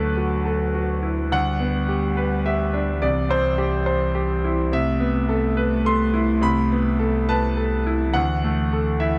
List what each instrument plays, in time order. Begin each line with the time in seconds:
Already playing: grand piano D2 A3 A4 B4, sub bass D2, cello F#3
0.17 grand piano F#4
0.45 grand piano A4
0.75 grand piano F#4
1.03 grand piano E4
1.31 grand piano D2 F#5, cello G3
1.60 grand piano B3
1.89 grand piano G4
2.17 grand piano B4
2.46 grand piano G4 E5
2.73 grand piano D4
3.01 sub bass C2, grand piano C2 D5, cello E3
3.29 grand piano C4 C5
3.58 grand piano G4
3.86 grand piano C5
4.15 grand piano G4
4.44 grand piano E4
4.71 grand piano C2 E5, cello A3
5.00 grand piano B3
5.29 grand piano A4
5.57 grand piano B4
5.85 grand piano A4 C6
6.14 grand piano E4
6.42 grand piano C2 B5
6.71 grand piano B3
6.99 grand piano A4
7.29 grand piano B4 A5
7.57 grand piano A4
7.87 grand piano E4
8.13 grand piano D2 F#5, sub bass D2, cello E3
8.44 grand piano A3
8.73 grand piano A4
9.00 grand piano E4 E5